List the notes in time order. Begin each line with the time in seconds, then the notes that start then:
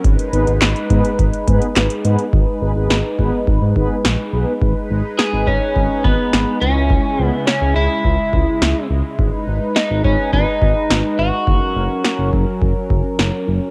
0.04 G#1 G#3 D#4 B4, kick, closed hi-hat
0.19 closed hi-hat
0.33 G#1 B3 D#4 G#4 B4, closed hi-hat
0.47 G#1, closed hi-hat
0.62 G#1, snare, clap, closed hi-hat
0.76 closed hi-hat
0.90 G#2 B3 D#4 G#4 B4, kick, closed hi-hat
1.05 closed hi-hat
1.19 G#1, kick, closed hi-hat
1.33 closed hi-hat
1.47 G#2 B3 D#4 G#4 B4, kick, closed hi-hat
1.62 closed hi-hat
1.76 G#1, snare, clap, closed hi-hat
1.90 closed hi-hat
2.05 G#2 B3 D#4 G#4 B4, closed hi-hat
2.19 closed hi-hat
2.33 G#1 G#3 D#4 B4, kick
2.62 G#1 B3 D#4 G#4 B4
2.76 G#1 B3 D#4 G#4 B4
2.90 G#1, snare
3.19 G#1 B3 D#4 G#4 B4, kick
3.47 G#1, kick
3.62 G#2
3.76 G#1 B3 D#4 G#4 B4, kick
4.05 A#1, snare
4.33 B1 B3 D#4 G#4 B4
4.62 G#1 G#3 D#4 B4, kick
4.90 G#1
5.19 G#4, snare
5.33 G#1
5.47 G#1 C#4, kick
5.76 G#1, kick
6.04 G#1 B3, kick
6.33 G#1, snare
6.62 C#2 C#3 C#4 E4
6.90 kick
7.19 C#2
7.26 B3
7.47 C#4, snare
7.62 C#2
7.76 C#2 E4
8.05 C#2, kick
8.33 C#2, kick
8.62 C#2, snare
8.90 C#2
9.19 G#1 D#4 B4, kick
9.47 G#1
9.76 D#4, snare
9.90 G#1
10.04 G#1 C#4, kick
10.33 G#1 D#4, kick
10.62 G#1, kick
10.90 G#1, snare
11.19 G#1 F#4
11.47 F#1 F#3 C#4 A#4, kick
11.76 F#1
12.05 snare
12.19 F#1
12.33 F#1, kick
12.62 F#1, kick
12.90 F#1, kick
13.19 F#1, snare
13.47 F#1